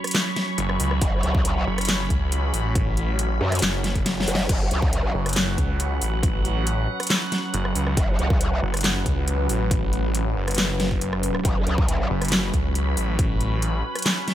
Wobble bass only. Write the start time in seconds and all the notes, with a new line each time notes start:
1.02 F#1
1.23 C#2
3.41 F#2
4.28 F#1
4.49 F#1
4.71 C#2
7.97 F#1
8.19 C#2
11.45 F#1
11.67 C#2